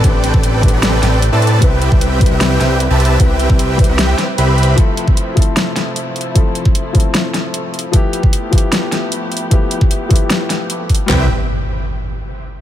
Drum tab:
HH |x---x---x---xx--x---x---x---xx--|x---x---x---xx--x---x---x---xx--|x---x---x---xx--x---x---x---xx--|x---x---x---xx--x---x---x---xx--|
CP |--------------------------------|--------------------------------|--------------------------------|--------------------------------|
SD |----------------o---o-----------|----------------o---o-----------|----------------o---o-----------|----------------o---o-----------|
BD |o-----o-----o-------------------|o-----o-----o-------------------|o-----o-----o-------------------|o-----o-----o-------------------|

HH |x---x---x---xx--x---x---x---xx--|x---x---x---xx--x---x---x---xx--|x---x---x---xx--x---x---x---xx--|--------------------------------|
CP |--------------------------------|--------------------------------|--------------------------------|x-------------------------------|
SD |----------------o---o-----------|----------------o---o-----------|----------------o---o-----------|o-------------------------------|
BD |o-----o-----o-------------------|o-----o-----o-------------------|o-----o-----o---------------o---|--------------------------------|